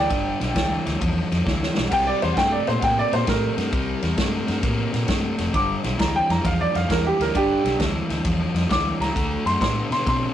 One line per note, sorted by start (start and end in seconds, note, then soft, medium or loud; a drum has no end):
0.00 0.82 D5 medium
0.00 0.84 G5 medium
0.10 0.30 G1 medium
0.10 0.38 G2 medium
0.10 0.38 D3 medium
0.10 kick medium
0.10 snare soft
0.10 ride medium
0.40 0.51 B1 medium
0.40 0.53 G2 medium
0.40 0.54 D3 medium
0.40 snare soft
0.40 ride medium
0.55 0.76 D2 medium
0.55 0.83 G2 medium
0.55 0.83 E3 medium
0.55 kick medium
0.55 snare loud
0.55 ride medium
0.86 0.96 D2 medium
0.86 0.99 G2 medium
0.86 1.00 E3 medium
0.86 snare soft
0.86 ride medium
1.00 1.21 E2 medium
1.00 1.28 G2 medium
1.00 1.28 F3 medium
1.00 kick medium
1.00 ride medium
1.32 1.41 F2 medium
1.32 1.44 G2 medium
1.32 1.45 F3 medium
1.32 snare soft
1.32 ride medium
1.46 1.66 D2 medium
1.46 1.73 G2 medium
1.46 1.74 E3 medium
1.46 kick medium
1.46 snare medium
1.63 snare medium
1.76 1.87 B1 medium
1.76 1.90 G2 medium
1.76 1.90 E3 medium
1.76 snare loud
1.88 2.19 C3 medium
1.88 2.19 G3 medium
1.88 1.92 F#5 medium
1.88 kick medium
1.88 snare soft
1.88 ride medium
1.88 crash medium
1.93 2.07 G5 loud
2.07 2.22 D5 loud
2.22 2.32 E2 medium
2.22 2.36 C3 medium
2.22 2.36 G3 medium
2.22 2.37 C5 medium
2.22 snare soft
2.22 ride medium
2.33 2.64 C3 medium
2.33 2.37 F#5 medium
2.33 ride medium
2.37 2.57 G2 medium
2.37 2.65 A3 loud
2.37 2.52 G5 loud
2.37 kick medium
2.37 snare loud
2.52 2.67 D5 medium
2.67 2.77 A#2 medium
2.67 2.80 C3 medium
2.67 2.81 A3 medium
2.67 2.82 C5 medium
2.67 snare soft
2.67 ride medium
2.79 3.02 A2 medium
2.79 3.09 C3 medium
2.79 3.09 A#3 loud
2.79 2.83 F#5 medium
2.79 kick medium
2.79 snare soft
2.79 ride medium
2.84 2.98 G5 loud
2.99 3.13 D5 loud
3.11 3.22 A#2 medium
3.11 3.25 C3 medium
3.11 3.26 A#3 medium
3.11 3.28 C5 medium
3.11 snare soft
3.11 ride medium
3.27 3.47 A2 medium
3.27 3.54 C3 medium
3.27 3.55 A3 loud
3.27 4.60 A#4 loud
3.27 kick medium
3.27 snare loud
3.27 ride medium
3.57 3.67 G2 medium
3.57 3.71 C3 medium
3.57 3.71 A3 medium
3.57 snare soft
3.57 ride medium
3.72 3.92 C2 medium
3.72 4.00 C3 medium
3.72 4.00 G3 medium
3.72 kick medium
3.72 ride medium
4.03 4.12 E2 medium
4.03 4.16 C3 medium
4.03 4.16 G3 medium
4.03 snare soft
4.03 ride medium
4.17 4.37 G2 medium
4.17 4.45 C3 medium
4.17 4.45 A3 loud
4.17 kick medium
4.17 snare loud
4.17 ride medium
4.47 4.58 G2 loud
4.47 4.61 C3 medium
4.47 4.61 A3 medium
4.47 snare soft
4.47 ride medium
4.62 4.83 A2 medium
4.62 4.90 C3 medium
4.62 4.90 A#3 loud
4.62 kick loud
4.62 snare soft
4.62 ride medium
4.92 5.03 A#2 medium
4.92 5.06 C3 medium
4.92 5.07 A#3 medium
4.92 snare soft
4.92 ride medium
5.07 5.28 G2 medium
5.07 5.35 C3 medium
5.07 5.36 A3 medium
5.07 kick medium
5.07 snare loud
5.07 ride medium
5.38 5.49 F1 medium
5.38 5.52 C3 medium
5.38 5.52 A3 medium
5.38 snare soft
5.38 ride medium
5.53 5.74 G1 medium
5.53 5.81 G2 medium
5.53 5.81 D3 medium
5.53 5.84 D6 loud
5.53 kick medium
5.53 snare soft
5.53 ride medium
5.84 5.94 B1 medium
5.84 5.97 G2 medium
5.84 5.98 D3 medium
5.84 snare soft
5.84 ride medium
5.98 6.19 D2 medium
5.98 6.26 G2 medium
5.98 6.26 E3 loud
5.98 6.14 A#5 medium
5.98 kick medium
5.98 snare loud
5.98 ride medium
6.16 6.30 G5 loud
6.29 6.39 F2 medium
6.29 6.42 G2 medium
6.29 6.43 E3 medium
6.29 6.45 A#5 medium
6.29 snare soft
6.29 ride medium
6.44 6.64 E2 medium
6.44 6.72 G2 medium
6.44 6.72 F3 loud
6.44 6.60 F5 medium
6.44 kick loud
6.44 snare soft
6.44 ride medium
6.61 6.75 D5 loud
6.74 6.85 F2 medium
6.74 6.87 G2 medium
6.74 6.88 F3 medium
6.74 6.90 F5 loud
6.74 snare soft
6.74 ride medium
6.88 7.10 E2 medium
6.88 7.16 G2 medium
6.88 7.17 E3 medium
6.88 7.05 A#4 loud
6.88 kick medium
6.88 snare loud
6.88 ride medium
7.07 7.20 G4 medium
7.19 7.29 D2 medium
7.19 7.32 G2 medium
7.19 7.33 E3 medium
7.19 7.35 A#4 medium
7.19 snare soft
7.19 ride medium
7.34 7.54 G1 medium
7.34 7.62 G2 medium
7.34 7.62 D3 medium
7.34 7.77 D4 medium
7.34 7.80 G4 loud
7.34 kick medium
7.34 ride medium
7.64 7.74 B1 medium
7.64 7.78 G2 medium
7.64 7.78 D3 medium
7.64 snare soft
7.64 ride medium
7.79 8.00 D2 medium
7.79 8.07 G2 medium
7.79 8.07 E3 loud
7.79 kick medium
7.79 snare loud
7.79 ride medium
8.09 8.20 D2 medium
8.09 8.23 G2 medium
8.09 8.24 E3 medium
8.09 snare soft
8.09 ride medium
8.25 8.45 E2 medium
8.25 8.53 G2 medium
8.25 8.53 F3 loud
8.25 kick medium
8.25 snare soft
8.25 ride loud
8.54 8.64 F2 medium
8.54 8.68 G2 medium
8.54 8.69 F3 medium
8.54 snare soft
8.54 ride medium
8.69 8.90 D2 medium
8.69 8.98 G2 medium
8.69 8.98 E3 loud
8.69 9.01 D6 loud
8.69 kick medium
8.69 snare loud
8.69 ride medium
9.00 9.10 C#2 medium
9.00 9.14 G2 medium
9.00 9.14 E3 medium
9.00 9.45 A#5 medium
9.00 snare soft
9.00 ride medium
9.15 9.35 D2 medium
9.15 9.43 D3 medium
9.15 9.43 A3 loud
9.15 kick medium
9.15 snare soft
9.15 ride medium
9.45 9.56 F#2 medium
9.45 9.59 D3 medium
9.45 9.60 A3 medium
9.45 9.60 C6 medium
9.45 snare soft
9.45 ride medium
9.61 9.81 A2 medium
9.61 9.89 D3 medium
9.61 9.89 B3 medium
9.61 9.91 C6 medium
9.61 kick medium
9.61 snare loud
9.61 ride medium
9.91 10.01 C3 medium
9.91 10.05 D3 medium
9.91 10.05 B3 medium
9.91 10.07 C6 medium
9.91 snare soft
9.91 ride medium
10.06 10.26 B2 medium
10.06 10.34 D3 medium
10.06 10.34 C4 medium
10.06 10.34 C6 medium
10.06 kick medium
10.06 snare soft
10.06 ride medium